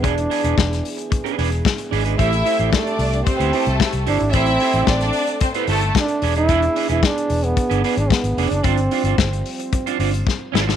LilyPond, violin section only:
\new Staff \with { instrumentName = "Violin section" } { \time 4/4 \key a \minor \tempo 4 = 112 r1 | <e' e''>4 <d' d''>4 <c' c''>16 <b b'>16 <a a'>4 r8 | <e' e''>4 <d' d''>4 <c' c''>16 <b b'>16 <a a'>8 r4 | r1 |
r1 | }